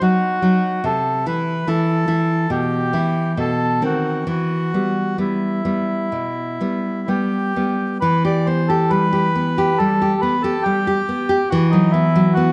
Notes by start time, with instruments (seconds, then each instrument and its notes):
0.01 nylon-string guitar F#3 D#4, bandoneon F#4
0.42 nylon-string guitar F#3 D#4
0.84 nylon-string guitar C3, bandoneon A4
1.26 nylon-string guitar E3 E4, bandoneon B4
1.67 nylon-string guitar E3 E4, bandoneon A4
2.07 nylon-string guitar E3 E4
2.50 nylon-string guitar B2, bandoneon G4
2.93 nylon-string guitar E3 E4
3.37 nylon-string guitar B2, bandoneon A4
3.82 nylon-string guitar D#3 C4, bandoneon F#4
4.27 nylon-string guitar E3, bandoneon F#4
4.74 nylon-string guitar G3 B3
5.18 nylon-string guitar G3 B3, bandoneon E4
5.65 nylon-string guitar G3 B3
6.12 nylon-string guitar B2
6.61 nylon-string guitar G3 B3
7.08 nylon-string guitar G3 B3, bandoneon G4
7.56 nylon-string guitar G3 B3
8.01 nylon-string guitar E3, bandoneon B4
8.25 nylon-string guitar G4, bandoneon D5
8.46 nylon-string guitar B3, bandoneon C5
8.68 nylon-string guitar G4, bandoneon A4
8.90 nylon-string guitar G3, bandoneon B4
9.13 nylon-string guitar G4
9.35 nylon-string guitar B3
9.58 nylon-string guitar G4
9.78 nylon-string guitar G3, bandoneon A4
10.02 nylon-string guitar G4
10.21 nylon-string guitar B3, bandoneon B4
10.42 nylon-string guitar G4, bandoneon A4
10.63 nylon-string guitar G3, bandoneon G4
10.87 nylon-string guitar G4
11.09 nylon-string guitar B3
11.29 nylon-string guitar G4
11.49 nylon-string guitar E3, bandoneon F#4
11.70 nylon-string guitar F#3, bandoneon D#4
11.91 nylon-string guitar B3, bandoneon E4
12.16 nylon-string guitar F#3
12.34 nylon-string guitar B3, bandoneon F#4